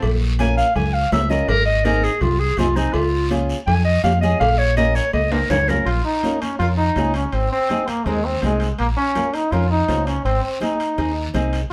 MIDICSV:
0, 0, Header, 1, 6, 480
1, 0, Start_track
1, 0, Key_signature, -5, "minor"
1, 0, Tempo, 364964
1, 43, Time_signature, 4, 2, 24, 8
1, 15425, End_track
2, 0, Start_track
2, 0, Title_t, "Clarinet"
2, 0, Program_c, 0, 71
2, 524, Note_on_c, 0, 80, 96
2, 745, Note_off_c, 0, 80, 0
2, 753, Note_on_c, 0, 77, 84
2, 990, Note_off_c, 0, 77, 0
2, 999, Note_on_c, 0, 80, 78
2, 1231, Note_on_c, 0, 77, 78
2, 1251, Note_off_c, 0, 80, 0
2, 1469, Note_off_c, 0, 77, 0
2, 1481, Note_on_c, 0, 76, 89
2, 1712, Note_on_c, 0, 75, 82
2, 1732, Note_off_c, 0, 76, 0
2, 1953, Note_on_c, 0, 70, 103
2, 1973, Note_off_c, 0, 75, 0
2, 2174, Note_off_c, 0, 70, 0
2, 2182, Note_on_c, 0, 75, 85
2, 2434, Note_on_c, 0, 70, 91
2, 2453, Note_off_c, 0, 75, 0
2, 2680, Note_on_c, 0, 68, 84
2, 2699, Note_off_c, 0, 70, 0
2, 2918, Note_on_c, 0, 65, 81
2, 2938, Note_off_c, 0, 68, 0
2, 3150, Note_on_c, 0, 68, 85
2, 3169, Note_off_c, 0, 65, 0
2, 3403, Note_on_c, 0, 65, 85
2, 3423, Note_off_c, 0, 68, 0
2, 3626, Note_on_c, 0, 63, 86
2, 3646, Note_off_c, 0, 65, 0
2, 3852, Note_on_c, 0, 65, 104
2, 3872, Note_off_c, 0, 63, 0
2, 4330, Note_off_c, 0, 65, 0
2, 4825, Note_on_c, 0, 80, 96
2, 5053, Note_off_c, 0, 80, 0
2, 5061, Note_on_c, 0, 75, 88
2, 5301, Note_off_c, 0, 75, 0
2, 5307, Note_on_c, 0, 77, 84
2, 5531, Note_off_c, 0, 77, 0
2, 5539, Note_on_c, 0, 75, 72
2, 5779, Note_off_c, 0, 75, 0
2, 5786, Note_on_c, 0, 77, 95
2, 6028, Note_on_c, 0, 73, 95
2, 6047, Note_off_c, 0, 77, 0
2, 6264, Note_off_c, 0, 73, 0
2, 6271, Note_on_c, 0, 75, 89
2, 6519, Note_on_c, 0, 73, 93
2, 6538, Note_off_c, 0, 75, 0
2, 6749, Note_off_c, 0, 73, 0
2, 6755, Note_on_c, 0, 75, 80
2, 6996, Note_on_c, 0, 70, 74
2, 7016, Note_off_c, 0, 75, 0
2, 7236, Note_on_c, 0, 73, 85
2, 7255, Note_off_c, 0, 70, 0
2, 7483, Note_on_c, 0, 70, 83
2, 7502, Note_off_c, 0, 73, 0
2, 7711, Note_off_c, 0, 70, 0
2, 15425, End_track
3, 0, Start_track
3, 0, Title_t, "Nylon-string guitar"
3, 0, Program_c, 1, 24
3, 519, Note_on_c, 1, 61, 71
3, 523, Note_on_c, 1, 65, 67
3, 530, Note_on_c, 1, 70, 85
3, 856, Note_off_c, 1, 61, 0
3, 858, Note_off_c, 1, 65, 0
3, 862, Note_off_c, 1, 70, 0
3, 1471, Note_on_c, 1, 61, 64
3, 1478, Note_on_c, 1, 65, 53
3, 1483, Note_on_c, 1, 70, 67
3, 1560, Note_off_c, 1, 61, 0
3, 1564, Note_off_c, 1, 65, 0
3, 1565, Note_off_c, 1, 70, 0
3, 1702, Note_on_c, 1, 61, 60
3, 1708, Note_on_c, 1, 65, 56
3, 1717, Note_on_c, 1, 70, 71
3, 1951, Note_off_c, 1, 61, 0
3, 1955, Note_off_c, 1, 65, 0
3, 1957, Note_off_c, 1, 70, 0
3, 2430, Note_on_c, 1, 60, 69
3, 2434, Note_on_c, 1, 63, 71
3, 2439, Note_on_c, 1, 68, 85
3, 2771, Note_off_c, 1, 60, 0
3, 2772, Note_off_c, 1, 63, 0
3, 2775, Note_off_c, 1, 68, 0
3, 3400, Note_on_c, 1, 60, 65
3, 3406, Note_on_c, 1, 63, 53
3, 3409, Note_on_c, 1, 68, 77
3, 3484, Note_off_c, 1, 60, 0
3, 3484, Note_off_c, 1, 63, 0
3, 3488, Note_off_c, 1, 68, 0
3, 3629, Note_on_c, 1, 60, 68
3, 3637, Note_on_c, 1, 63, 60
3, 3642, Note_on_c, 1, 68, 78
3, 3873, Note_off_c, 1, 60, 0
3, 3877, Note_off_c, 1, 63, 0
3, 3880, Note_off_c, 1, 68, 0
3, 4344, Note_on_c, 1, 61, 75
3, 4354, Note_on_c, 1, 65, 74
3, 4362, Note_on_c, 1, 68, 74
3, 4686, Note_off_c, 1, 61, 0
3, 4692, Note_off_c, 1, 65, 0
3, 4693, Note_off_c, 1, 68, 0
3, 5305, Note_on_c, 1, 61, 65
3, 5309, Note_on_c, 1, 65, 65
3, 5313, Note_on_c, 1, 67, 77
3, 5394, Note_off_c, 1, 65, 0
3, 5395, Note_off_c, 1, 61, 0
3, 5398, Note_off_c, 1, 67, 0
3, 5555, Note_on_c, 1, 61, 66
3, 5561, Note_on_c, 1, 65, 64
3, 5568, Note_on_c, 1, 68, 78
3, 5795, Note_off_c, 1, 61, 0
3, 5799, Note_off_c, 1, 65, 0
3, 5800, Note_off_c, 1, 68, 0
3, 6273, Note_on_c, 1, 61, 74
3, 6277, Note_on_c, 1, 65, 67
3, 6284, Note_on_c, 1, 70, 80
3, 6609, Note_off_c, 1, 61, 0
3, 6612, Note_off_c, 1, 65, 0
3, 6614, Note_off_c, 1, 70, 0
3, 7231, Note_on_c, 1, 61, 68
3, 7239, Note_on_c, 1, 65, 57
3, 7244, Note_on_c, 1, 70, 70
3, 7317, Note_off_c, 1, 61, 0
3, 7319, Note_off_c, 1, 65, 0
3, 7323, Note_off_c, 1, 70, 0
3, 7487, Note_on_c, 1, 61, 65
3, 7496, Note_on_c, 1, 70, 70
3, 7497, Note_on_c, 1, 65, 62
3, 7721, Note_off_c, 1, 61, 0
3, 7723, Note_off_c, 1, 65, 0
3, 7725, Note_off_c, 1, 70, 0
3, 8203, Note_on_c, 1, 61, 67
3, 8207, Note_on_c, 1, 65, 61
3, 8213, Note_on_c, 1, 70, 73
3, 8367, Note_off_c, 1, 61, 0
3, 8370, Note_off_c, 1, 65, 0
3, 8370, Note_off_c, 1, 70, 0
3, 8690, Note_on_c, 1, 61, 59
3, 8698, Note_on_c, 1, 65, 57
3, 8701, Note_on_c, 1, 70, 62
3, 8851, Note_off_c, 1, 61, 0
3, 8853, Note_off_c, 1, 65, 0
3, 8856, Note_off_c, 1, 70, 0
3, 9162, Note_on_c, 1, 61, 60
3, 9167, Note_on_c, 1, 65, 51
3, 9179, Note_on_c, 1, 68, 68
3, 9495, Note_off_c, 1, 61, 0
3, 9497, Note_off_c, 1, 65, 0
3, 9503, Note_off_c, 1, 68, 0
3, 10122, Note_on_c, 1, 60, 69
3, 10128, Note_on_c, 1, 63, 64
3, 10137, Note_on_c, 1, 68, 74
3, 10288, Note_off_c, 1, 60, 0
3, 10289, Note_off_c, 1, 63, 0
3, 10295, Note_off_c, 1, 68, 0
3, 10602, Note_on_c, 1, 60, 66
3, 10612, Note_on_c, 1, 63, 58
3, 10615, Note_on_c, 1, 70, 62
3, 10768, Note_off_c, 1, 60, 0
3, 10771, Note_off_c, 1, 63, 0
3, 10774, Note_off_c, 1, 70, 0
3, 11078, Note_on_c, 1, 60, 54
3, 11085, Note_on_c, 1, 63, 49
3, 11086, Note_on_c, 1, 68, 60
3, 11414, Note_off_c, 1, 60, 0
3, 11416, Note_off_c, 1, 63, 0
3, 11418, Note_off_c, 1, 68, 0
3, 12036, Note_on_c, 1, 61, 67
3, 12043, Note_on_c, 1, 65, 60
3, 12044, Note_on_c, 1, 70, 74
3, 12205, Note_off_c, 1, 61, 0
3, 12208, Note_off_c, 1, 65, 0
3, 12209, Note_off_c, 1, 70, 0
3, 12521, Note_on_c, 1, 61, 58
3, 12527, Note_on_c, 1, 65, 54
3, 12534, Note_on_c, 1, 70, 75
3, 12688, Note_off_c, 1, 61, 0
3, 12692, Note_off_c, 1, 65, 0
3, 12693, Note_off_c, 1, 70, 0
3, 12995, Note_on_c, 1, 61, 51
3, 13002, Note_on_c, 1, 65, 52
3, 13010, Note_on_c, 1, 72, 67
3, 13333, Note_off_c, 1, 61, 0
3, 13339, Note_off_c, 1, 65, 0
3, 13339, Note_off_c, 1, 72, 0
3, 13944, Note_on_c, 1, 60, 70
3, 13953, Note_on_c, 1, 63, 60
3, 13954, Note_on_c, 1, 68, 78
3, 14121, Note_off_c, 1, 60, 0
3, 14122, Note_off_c, 1, 63, 0
3, 14125, Note_off_c, 1, 68, 0
3, 14438, Note_on_c, 1, 60, 60
3, 14441, Note_on_c, 1, 63, 57
3, 14444, Note_on_c, 1, 68, 66
3, 14607, Note_off_c, 1, 60, 0
3, 14608, Note_off_c, 1, 63, 0
3, 14610, Note_off_c, 1, 68, 0
3, 14910, Note_on_c, 1, 60, 70
3, 14919, Note_on_c, 1, 63, 63
3, 14924, Note_on_c, 1, 68, 70
3, 15252, Note_off_c, 1, 60, 0
3, 15254, Note_off_c, 1, 63, 0
3, 15257, Note_off_c, 1, 68, 0
3, 15425, End_track
4, 0, Start_track
4, 0, Title_t, "Trombone"
4, 0, Program_c, 2, 57
4, 7702, Note_on_c, 2, 65, 93
4, 7931, Note_off_c, 2, 65, 0
4, 7953, Note_on_c, 2, 63, 87
4, 8429, Note_on_c, 2, 61, 75
4, 8449, Note_off_c, 2, 63, 0
4, 8660, Note_off_c, 2, 61, 0
4, 8668, Note_on_c, 2, 65, 104
4, 8778, Note_off_c, 2, 65, 0
4, 8912, Note_on_c, 2, 63, 97
4, 9360, Note_off_c, 2, 63, 0
4, 9407, Note_on_c, 2, 61, 73
4, 9643, Note_on_c, 2, 60, 83
4, 9662, Note_off_c, 2, 61, 0
4, 9879, Note_off_c, 2, 60, 0
4, 9893, Note_on_c, 2, 60, 94
4, 10364, Note_on_c, 2, 58, 81
4, 10384, Note_off_c, 2, 60, 0
4, 10601, Note_on_c, 2, 56, 94
4, 10620, Note_off_c, 2, 58, 0
4, 10849, Note_on_c, 2, 60, 82
4, 10868, Note_off_c, 2, 56, 0
4, 11083, Note_off_c, 2, 60, 0
4, 11093, Note_on_c, 2, 56, 83
4, 11421, Note_off_c, 2, 56, 0
4, 11560, Note_on_c, 2, 58, 82
4, 11668, Note_off_c, 2, 58, 0
4, 11792, Note_on_c, 2, 61, 94
4, 12282, Note_on_c, 2, 63, 82
4, 12302, Note_off_c, 2, 61, 0
4, 12521, Note_on_c, 2, 65, 91
4, 12541, Note_off_c, 2, 63, 0
4, 12757, Note_off_c, 2, 65, 0
4, 12765, Note_on_c, 2, 63, 86
4, 13254, Note_on_c, 2, 61, 73
4, 13273, Note_off_c, 2, 63, 0
4, 13469, Note_off_c, 2, 61, 0
4, 13477, Note_on_c, 2, 60, 93
4, 13701, Note_off_c, 2, 60, 0
4, 13728, Note_on_c, 2, 60, 69
4, 13947, Note_off_c, 2, 60, 0
4, 13962, Note_on_c, 2, 63, 75
4, 14868, Note_off_c, 2, 63, 0
4, 15425, End_track
5, 0, Start_track
5, 0, Title_t, "Fingered electric bass"
5, 0, Program_c, 3, 33
5, 36, Note_on_c, 3, 34, 106
5, 806, Note_off_c, 3, 34, 0
5, 992, Note_on_c, 3, 37, 102
5, 1380, Note_off_c, 3, 37, 0
5, 1471, Note_on_c, 3, 37, 103
5, 1859, Note_off_c, 3, 37, 0
5, 1947, Note_on_c, 3, 32, 98
5, 2719, Note_off_c, 3, 32, 0
5, 2906, Note_on_c, 3, 36, 102
5, 3295, Note_off_c, 3, 36, 0
5, 3382, Note_on_c, 3, 36, 91
5, 3772, Note_off_c, 3, 36, 0
5, 3866, Note_on_c, 3, 37, 101
5, 4638, Note_off_c, 3, 37, 0
5, 4828, Note_on_c, 3, 41, 110
5, 5215, Note_off_c, 3, 41, 0
5, 5307, Note_on_c, 3, 41, 96
5, 5694, Note_off_c, 3, 41, 0
5, 5794, Note_on_c, 3, 34, 114
5, 6562, Note_off_c, 3, 34, 0
5, 6752, Note_on_c, 3, 37, 94
5, 7137, Note_off_c, 3, 37, 0
5, 7229, Note_on_c, 3, 37, 97
5, 7615, Note_off_c, 3, 37, 0
5, 7707, Note_on_c, 3, 34, 81
5, 7901, Note_off_c, 3, 34, 0
5, 8673, Note_on_c, 3, 41, 88
5, 9058, Note_off_c, 3, 41, 0
5, 9152, Note_on_c, 3, 37, 89
5, 9538, Note_off_c, 3, 37, 0
5, 9635, Note_on_c, 3, 32, 85
5, 9828, Note_off_c, 3, 32, 0
5, 10597, Note_on_c, 3, 39, 105
5, 10981, Note_off_c, 3, 39, 0
5, 11079, Note_on_c, 3, 36, 85
5, 11463, Note_off_c, 3, 36, 0
5, 11569, Note_on_c, 3, 34, 83
5, 11757, Note_off_c, 3, 34, 0
5, 12520, Note_on_c, 3, 41, 95
5, 12904, Note_off_c, 3, 41, 0
5, 12998, Note_on_c, 3, 37, 81
5, 13383, Note_off_c, 3, 37, 0
5, 13476, Note_on_c, 3, 32, 91
5, 13669, Note_off_c, 3, 32, 0
5, 14443, Note_on_c, 3, 39, 88
5, 14826, Note_off_c, 3, 39, 0
5, 14918, Note_on_c, 3, 36, 82
5, 15302, Note_off_c, 3, 36, 0
5, 15425, End_track
6, 0, Start_track
6, 0, Title_t, "Drums"
6, 32, Note_on_c, 9, 56, 102
6, 39, Note_on_c, 9, 63, 31
6, 39, Note_on_c, 9, 64, 67
6, 47, Note_on_c, 9, 74, 78
6, 164, Note_off_c, 9, 56, 0
6, 171, Note_off_c, 9, 63, 0
6, 171, Note_off_c, 9, 64, 0
6, 178, Note_off_c, 9, 74, 0
6, 512, Note_on_c, 9, 56, 75
6, 518, Note_on_c, 9, 73, 70
6, 523, Note_on_c, 9, 63, 86
6, 644, Note_off_c, 9, 56, 0
6, 649, Note_off_c, 9, 73, 0
6, 655, Note_off_c, 9, 63, 0
6, 761, Note_on_c, 9, 73, 76
6, 893, Note_off_c, 9, 73, 0
6, 994, Note_on_c, 9, 56, 79
6, 1005, Note_on_c, 9, 74, 67
6, 1009, Note_on_c, 9, 63, 35
6, 1009, Note_on_c, 9, 64, 91
6, 1125, Note_off_c, 9, 56, 0
6, 1136, Note_off_c, 9, 74, 0
6, 1141, Note_off_c, 9, 63, 0
6, 1141, Note_off_c, 9, 64, 0
6, 1476, Note_on_c, 9, 56, 71
6, 1476, Note_on_c, 9, 66, 72
6, 1485, Note_on_c, 9, 63, 83
6, 1486, Note_on_c, 9, 73, 75
6, 1607, Note_off_c, 9, 56, 0
6, 1607, Note_off_c, 9, 66, 0
6, 1617, Note_off_c, 9, 63, 0
6, 1618, Note_off_c, 9, 73, 0
6, 1724, Note_on_c, 9, 73, 69
6, 1855, Note_off_c, 9, 73, 0
6, 1954, Note_on_c, 9, 56, 107
6, 1964, Note_on_c, 9, 74, 72
6, 1966, Note_on_c, 9, 63, 33
6, 1966, Note_on_c, 9, 64, 63
6, 2085, Note_off_c, 9, 56, 0
6, 2096, Note_off_c, 9, 74, 0
6, 2098, Note_off_c, 9, 63, 0
6, 2098, Note_off_c, 9, 64, 0
6, 2433, Note_on_c, 9, 56, 71
6, 2440, Note_on_c, 9, 73, 63
6, 2441, Note_on_c, 9, 63, 87
6, 2564, Note_off_c, 9, 56, 0
6, 2572, Note_off_c, 9, 63, 0
6, 2572, Note_off_c, 9, 73, 0
6, 2678, Note_on_c, 9, 73, 74
6, 2810, Note_off_c, 9, 73, 0
6, 2906, Note_on_c, 9, 56, 79
6, 2917, Note_on_c, 9, 74, 67
6, 2933, Note_on_c, 9, 63, 39
6, 2933, Note_on_c, 9, 64, 85
6, 3037, Note_off_c, 9, 56, 0
6, 3048, Note_off_c, 9, 74, 0
6, 3064, Note_off_c, 9, 63, 0
6, 3064, Note_off_c, 9, 64, 0
6, 3380, Note_on_c, 9, 56, 69
6, 3398, Note_on_c, 9, 73, 74
6, 3401, Note_on_c, 9, 63, 84
6, 3401, Note_on_c, 9, 64, 73
6, 3511, Note_off_c, 9, 56, 0
6, 3530, Note_off_c, 9, 73, 0
6, 3533, Note_off_c, 9, 63, 0
6, 3533, Note_off_c, 9, 64, 0
6, 3637, Note_on_c, 9, 73, 77
6, 3768, Note_off_c, 9, 73, 0
6, 3861, Note_on_c, 9, 56, 105
6, 3878, Note_on_c, 9, 74, 76
6, 3881, Note_on_c, 9, 63, 30
6, 3993, Note_off_c, 9, 56, 0
6, 4010, Note_off_c, 9, 74, 0
6, 4013, Note_off_c, 9, 63, 0
6, 4351, Note_on_c, 9, 56, 68
6, 4356, Note_on_c, 9, 63, 84
6, 4359, Note_on_c, 9, 73, 68
6, 4482, Note_off_c, 9, 56, 0
6, 4487, Note_off_c, 9, 63, 0
6, 4491, Note_off_c, 9, 73, 0
6, 4595, Note_on_c, 9, 73, 82
6, 4727, Note_off_c, 9, 73, 0
6, 4834, Note_on_c, 9, 63, 34
6, 4834, Note_on_c, 9, 64, 84
6, 4835, Note_on_c, 9, 74, 71
6, 4838, Note_on_c, 9, 56, 82
6, 4966, Note_off_c, 9, 63, 0
6, 4966, Note_off_c, 9, 64, 0
6, 4967, Note_off_c, 9, 74, 0
6, 4970, Note_off_c, 9, 56, 0
6, 5318, Note_on_c, 9, 56, 69
6, 5318, Note_on_c, 9, 63, 84
6, 5322, Note_on_c, 9, 73, 83
6, 5450, Note_off_c, 9, 56, 0
6, 5450, Note_off_c, 9, 63, 0
6, 5454, Note_off_c, 9, 73, 0
6, 5565, Note_on_c, 9, 73, 63
6, 5697, Note_off_c, 9, 73, 0
6, 5797, Note_on_c, 9, 74, 87
6, 5801, Note_on_c, 9, 56, 115
6, 5803, Note_on_c, 9, 63, 33
6, 5803, Note_on_c, 9, 64, 61
6, 5929, Note_off_c, 9, 74, 0
6, 5932, Note_off_c, 9, 56, 0
6, 5935, Note_off_c, 9, 63, 0
6, 5935, Note_off_c, 9, 64, 0
6, 6271, Note_on_c, 9, 56, 72
6, 6279, Note_on_c, 9, 73, 71
6, 6283, Note_on_c, 9, 63, 89
6, 6403, Note_off_c, 9, 56, 0
6, 6410, Note_off_c, 9, 73, 0
6, 6414, Note_off_c, 9, 63, 0
6, 6514, Note_on_c, 9, 73, 83
6, 6646, Note_off_c, 9, 73, 0
6, 6752, Note_on_c, 9, 63, 83
6, 6753, Note_on_c, 9, 56, 85
6, 6763, Note_on_c, 9, 74, 68
6, 6884, Note_off_c, 9, 56, 0
6, 6884, Note_off_c, 9, 63, 0
6, 6895, Note_off_c, 9, 74, 0
6, 6992, Note_on_c, 9, 65, 105
6, 6997, Note_on_c, 9, 63, 82
6, 7124, Note_off_c, 9, 65, 0
6, 7129, Note_off_c, 9, 63, 0
6, 7234, Note_on_c, 9, 56, 77
6, 7234, Note_on_c, 9, 65, 81
6, 7241, Note_on_c, 9, 73, 73
6, 7245, Note_on_c, 9, 64, 82
6, 7366, Note_off_c, 9, 56, 0
6, 7366, Note_off_c, 9, 65, 0
6, 7372, Note_off_c, 9, 73, 0
6, 7376, Note_off_c, 9, 64, 0
6, 7471, Note_on_c, 9, 66, 84
6, 7482, Note_on_c, 9, 73, 68
6, 7487, Note_on_c, 9, 64, 71
6, 7602, Note_off_c, 9, 66, 0
6, 7614, Note_off_c, 9, 73, 0
6, 7618, Note_off_c, 9, 64, 0
6, 7715, Note_on_c, 9, 65, 64
6, 7722, Note_on_c, 9, 74, 65
6, 7846, Note_off_c, 9, 65, 0
6, 7853, Note_off_c, 9, 74, 0
6, 8194, Note_on_c, 9, 65, 60
6, 8199, Note_on_c, 9, 63, 71
6, 8207, Note_on_c, 9, 73, 67
6, 8326, Note_off_c, 9, 65, 0
6, 8331, Note_off_c, 9, 63, 0
6, 8338, Note_off_c, 9, 73, 0
6, 8440, Note_on_c, 9, 65, 70
6, 8445, Note_on_c, 9, 73, 72
6, 8450, Note_on_c, 9, 63, 61
6, 8572, Note_off_c, 9, 65, 0
6, 8576, Note_off_c, 9, 73, 0
6, 8581, Note_off_c, 9, 63, 0
6, 8677, Note_on_c, 9, 65, 58
6, 8682, Note_on_c, 9, 74, 64
6, 8809, Note_off_c, 9, 65, 0
6, 8814, Note_off_c, 9, 74, 0
6, 9152, Note_on_c, 9, 65, 61
6, 9152, Note_on_c, 9, 66, 65
6, 9158, Note_on_c, 9, 63, 70
6, 9169, Note_on_c, 9, 73, 65
6, 9284, Note_off_c, 9, 65, 0
6, 9284, Note_off_c, 9, 66, 0
6, 9290, Note_off_c, 9, 63, 0
6, 9300, Note_off_c, 9, 73, 0
6, 9389, Note_on_c, 9, 65, 63
6, 9403, Note_on_c, 9, 73, 64
6, 9520, Note_off_c, 9, 65, 0
6, 9534, Note_off_c, 9, 73, 0
6, 9634, Note_on_c, 9, 65, 66
6, 9646, Note_on_c, 9, 74, 71
6, 9765, Note_off_c, 9, 65, 0
6, 9778, Note_off_c, 9, 74, 0
6, 10114, Note_on_c, 9, 65, 60
6, 10126, Note_on_c, 9, 63, 85
6, 10127, Note_on_c, 9, 73, 65
6, 10245, Note_off_c, 9, 65, 0
6, 10257, Note_off_c, 9, 63, 0
6, 10258, Note_off_c, 9, 73, 0
6, 10359, Note_on_c, 9, 65, 68
6, 10362, Note_on_c, 9, 73, 61
6, 10363, Note_on_c, 9, 63, 68
6, 10491, Note_off_c, 9, 65, 0
6, 10494, Note_off_c, 9, 63, 0
6, 10494, Note_off_c, 9, 73, 0
6, 10598, Note_on_c, 9, 65, 52
6, 10610, Note_on_c, 9, 74, 57
6, 10730, Note_off_c, 9, 65, 0
6, 10742, Note_off_c, 9, 74, 0
6, 11073, Note_on_c, 9, 65, 63
6, 11073, Note_on_c, 9, 66, 64
6, 11078, Note_on_c, 9, 63, 71
6, 11089, Note_on_c, 9, 73, 66
6, 11205, Note_off_c, 9, 65, 0
6, 11205, Note_off_c, 9, 66, 0
6, 11210, Note_off_c, 9, 63, 0
6, 11220, Note_off_c, 9, 73, 0
6, 11308, Note_on_c, 9, 65, 62
6, 11330, Note_on_c, 9, 73, 60
6, 11440, Note_off_c, 9, 65, 0
6, 11461, Note_off_c, 9, 73, 0
6, 11554, Note_on_c, 9, 65, 67
6, 11569, Note_on_c, 9, 74, 68
6, 11685, Note_off_c, 9, 65, 0
6, 11701, Note_off_c, 9, 74, 0
6, 12038, Note_on_c, 9, 65, 61
6, 12046, Note_on_c, 9, 73, 70
6, 12048, Note_on_c, 9, 63, 79
6, 12170, Note_off_c, 9, 65, 0
6, 12178, Note_off_c, 9, 73, 0
6, 12179, Note_off_c, 9, 63, 0
6, 12278, Note_on_c, 9, 65, 64
6, 12292, Note_on_c, 9, 73, 67
6, 12410, Note_off_c, 9, 65, 0
6, 12423, Note_off_c, 9, 73, 0
6, 12526, Note_on_c, 9, 65, 56
6, 12529, Note_on_c, 9, 74, 57
6, 12657, Note_off_c, 9, 65, 0
6, 12661, Note_off_c, 9, 74, 0
6, 13000, Note_on_c, 9, 65, 60
6, 13000, Note_on_c, 9, 66, 68
6, 13006, Note_on_c, 9, 73, 65
6, 13009, Note_on_c, 9, 63, 64
6, 13131, Note_off_c, 9, 65, 0
6, 13131, Note_off_c, 9, 66, 0
6, 13138, Note_off_c, 9, 73, 0
6, 13140, Note_off_c, 9, 63, 0
6, 13244, Note_on_c, 9, 65, 58
6, 13247, Note_on_c, 9, 73, 55
6, 13375, Note_off_c, 9, 65, 0
6, 13378, Note_off_c, 9, 73, 0
6, 13488, Note_on_c, 9, 65, 63
6, 13494, Note_on_c, 9, 74, 71
6, 13620, Note_off_c, 9, 65, 0
6, 13626, Note_off_c, 9, 74, 0
6, 13962, Note_on_c, 9, 65, 61
6, 13970, Note_on_c, 9, 63, 76
6, 13971, Note_on_c, 9, 73, 67
6, 14094, Note_off_c, 9, 65, 0
6, 14101, Note_off_c, 9, 63, 0
6, 14103, Note_off_c, 9, 73, 0
6, 14203, Note_on_c, 9, 73, 64
6, 14204, Note_on_c, 9, 65, 58
6, 14334, Note_off_c, 9, 73, 0
6, 14335, Note_off_c, 9, 65, 0
6, 14442, Note_on_c, 9, 65, 52
6, 14447, Note_on_c, 9, 74, 63
6, 14573, Note_off_c, 9, 65, 0
6, 14579, Note_off_c, 9, 74, 0
6, 14921, Note_on_c, 9, 65, 62
6, 14923, Note_on_c, 9, 73, 65
6, 14924, Note_on_c, 9, 63, 78
6, 15052, Note_off_c, 9, 65, 0
6, 15055, Note_off_c, 9, 63, 0
6, 15055, Note_off_c, 9, 73, 0
6, 15162, Note_on_c, 9, 65, 57
6, 15166, Note_on_c, 9, 73, 63
6, 15294, Note_off_c, 9, 65, 0
6, 15298, Note_off_c, 9, 73, 0
6, 15425, End_track
0, 0, End_of_file